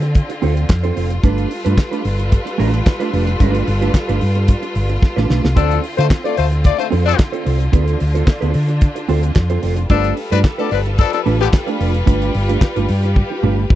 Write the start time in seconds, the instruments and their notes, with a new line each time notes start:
Already playing: fingered electric bass D3, string section D3 C4 F4
0.02 muted clean electric guitar stroke, snare, closed hi-hat
0.15 kick, closed hi-hat
0.29 muted clean electric guitar stroke, closed hi-hat
0.42 fingered electric bass D2, clean electric guitar C4 F4 A4 C5, open hi-hat
0.56 muted clean electric guitar stroke, closed hi-hat
0.69 fingered electric bass F2, muted clean electric guitar stroke, kick, snare, clap, closed hi-hat
0.83 clean electric guitar C4 F4 A4 C5, closed hi-hat
0.96 fingered electric bass F1, clean electric guitar C4 F4 A4 C5, open hi-hat
1.10 muted clean electric guitar stroke, closed hi-hat
1.23 fingered electric bass G1, string section G3 A4 B4, clean electric guitar A3 D4 F4 B4, kick, closed hi-hat
1.38 closed hi-hat
1.51 muted clean electric guitar stroke, open hi-hat
1.65 fingered electric bass G2, clean electric guitar A3 D4 F4 B4, closed hi-hat
1.78 muted clean electric guitar stroke, kick, snare, clap, closed hi-hat
1.91 clean electric guitar A3 D4 F4 B4, closed hi-hat
2.04 fingered electric bass G1, muted clean electric guitar stroke, open hi-hat
2.19 muted clean electric guitar stroke, closed hi-hat
2.32 kick, closed hi-hat
2.45 muted clean electric guitar stroke, closed hi-hat
2.58 fingered electric bass A1, clean electric guitar A3 D4 F4 B4, open hi-hat
2.74 closed hi-hat
2.86 muted clean electric guitar stroke, kick, snare, clap, closed hi-hat
3.00 clean electric guitar A3 D4 F4 B4, closed hi-hat
3.13 fingered electric bass F1, clean electric guitar A3 D4 F4 B4, open hi-hat
3.27 muted clean electric guitar stroke, closed hi-hat
3.40 fingered electric bass G1, clean electric guitar G#3 D4 F4 B4, kick, closed hi-hat
3.51 clean electric guitar A3, closed hi-hat
3.67 fingered electric bass G1, muted clean electric guitar stroke, open hi-hat
3.81 clean electric guitar A3 D4 F4 B4, closed hi-hat
3.94 kick, snare, clap, closed hi-hat
4.08 fingered electric bass G1, clean electric guitar A3 D4 F4 B4, closed hi-hat
4.21 fingered electric bass G2, muted clean electric guitar stroke, open hi-hat
4.35 muted clean electric guitar stroke, closed hi-hat
4.48 muted clean electric guitar stroke, kick, closed hi-hat
4.62 muted clean electric guitar stroke, closed hi-hat
4.75 fingered electric bass G1, open hi-hat
4.89 muted clean electric guitar stroke, closed hi-hat
5.02 muted clean electric guitar stroke, kick, snare
5.17 fingered electric bass A1, clean electric guitar A3 D4 F4 B4, snare
5.28 fingered electric bass B1, clean electric guitar A3 D4 F4 B4, snare
5.43 fingered electric bass C2, muted clean electric guitar stroke, snare
5.56 fingered electric bass D2, string section D3 C4, horn section F3 D4 A4, clean electric guitar C4 F4 A4 C5, kick, closed hi-hat
5.71 closed hi-hat
5.83 muted clean electric guitar stroke, open hi-hat
5.97 fingered electric bass D3, horn section A3 F4 C5, clean electric guitar C4 F4 A4 C5, closed hi-hat
6.10 muted clean electric guitar stroke, kick, snare, clap, closed hi-hat
6.24 horn section A3 F4 D5, clean electric guitar C4 F4 A4 C5, closed hi-hat
6.37 fingered electric bass D2, horn section A3 F4 C5, muted clean electric guitar stroke, open hi-hat
6.51 muted clean electric guitar stroke, closed hi-hat
6.64 horn section A3 F4 D5, kick, closed hi-hat
6.78 horn section A3 F4 C5, muted clean electric guitar stroke, closed hi-hat
6.90 fingered electric bass F2, clean electric guitar C4 F4 A4 C5, open hi-hat
7.06 horn section F3 D4 A4, muted clean electric guitar stroke, closed hi-hat
7.18 muted clean electric guitar stroke, kick, snare, clap, closed hi-hat
7.32 clean electric guitar C4 F4 A4 C5, closed hi-hat
7.45 fingered electric bass C2, clean electric guitar C4 F4 A4 C5, open hi-hat
7.60 muted clean electric guitar stroke, closed hi-hat
7.72 fingered electric bass D2, clean electric guitar B3 E4 G#4 C5, string section D4, kick, closed hi-hat
7.83 clean electric guitar C4 F4 A4
7.88 closed hi-hat
8.00 fingered electric bass D2, muted clean electric guitar stroke, open hi-hat
8.14 clean electric guitar C4 F4 A4 C5, closed hi-hat
8.27 muted clean electric guitar stroke, kick, snare, clap, closed hi-hat
8.41 fingered electric bass D2, clean electric guitar C4 F4 A4 C5, closed hi-hat
8.54 fingered electric bass D3, muted clean electric guitar stroke, open hi-hat
8.68 muted clean electric guitar stroke, closed hi-hat
8.81 kick, closed hi-hat
8.96 muted clean electric guitar stroke, closed hi-hat
9.08 fingered electric bass D2, clean electric guitar C4 F4 A4 C5, open hi-hat
9.23 muted clean electric guitar stroke, closed hi-hat
9.35 fingered electric bass F2, muted clean electric guitar stroke, kick, snare, clap, closed hi-hat
9.50 clean electric guitar C4 F4 A4 C5, closed hi-hat
9.62 fingered electric bass F1, clean electric guitar C4 F4 A4 C5, open hi-hat
9.77 muted clean electric guitar stroke, closed hi-hat
9.90 fingered electric bass G1, horn section F3 D4 A4, string section G3 F4 A4 B4, clean electric guitar A3 D4 F4 B4, kick, closed hi-hat
10.04 closed hi-hat
10.17 muted clean electric guitar stroke, open hi-hat
10.31 fingered electric bass G2, horn section F3 D4 B4, clean electric guitar A3 D4 F4 B4, closed hi-hat
10.44 muted clean electric guitar stroke, kick, snare, clap, closed hi-hat
10.58 clean electric guitar A3 D4 F4 B4, horn section B3 A4 D5, closed hi-hat
10.71 fingered electric bass G1, horn section F3 D4 B4, muted clean electric guitar stroke, open hi-hat
10.86 muted clean electric guitar stroke, closed hi-hat
10.98 horn section F3 D4 A4, kick, closed hi-hat
11.13 horn section F3 D4 A4, muted clean electric guitar stroke, closed hi-hat
11.26 fingered electric bass A1, clean electric guitar A3 D4 F4 B4, open hi-hat
11.40 horn section D3 B3 G4, muted clean electric guitar stroke, closed hi-hat
11.53 muted clean electric guitar stroke, kick, snare, clap, closed hi-hat
11.67 clean electric guitar A3 D4 F4 B4, closed hi-hat
11.79 fingered electric bass F1, clean electric guitar A3 D4 F4 B4, open hi-hat
11.94 muted clean electric guitar stroke, closed hi-hat
12.06 fingered electric bass G1, clean electric guitar A3 D4 F4 B4, string section G4, kick, closed hi-hat
12.22 closed hi-hat
12.35 fingered electric bass G1, open hi-hat
12.48 clean electric guitar A3 D4 F4 B4, closed hi-hat
12.61 kick, snare, clap, closed hi-hat
12.76 fingered electric bass G1, clean electric guitar A3 D4 F4 B4, closed hi-hat
12.89 fingered electric bass G2, muted clean electric guitar stroke, open hi-hat
13.03 muted clean electric guitar stroke, snare, closed hi-hat
13.16 kick, high tom
13.30 muted clean electric guitar stroke
13.43 fingered electric bass G1, clean electric guitar A3 D4 F4 B4, mid tom
13.58 muted clean electric guitar stroke
13.70 muted clean electric guitar stroke, kick, mid tom